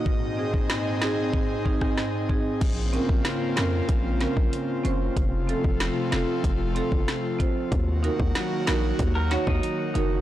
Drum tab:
CC |----------------|x---------------|----------------|----------------|
HH |----------------|x-x-x-x-x-x-x-x-|x-x-x-x-x-x-x-x-|x-x-x-x-x-x-x-x-|
SD |----o-o----ro---|----o-o---o-----|----o-o-----o---|----o-o---o-----|
BD |o--o----o-oo--o-|o--o----o--o----|o--o----o--o--o-|o--o----o--o----|